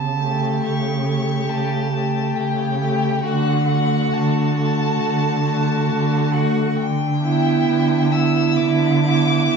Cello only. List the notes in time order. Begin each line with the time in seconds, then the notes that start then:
Already playing: C#3
0.64 C#3
1.50 C#3
2.36 C#3
3.24 D3
4.13 D3
5.00 D3
5.90 D3
6.78 D3
7.68 D3
8.59 D3
9.51 D3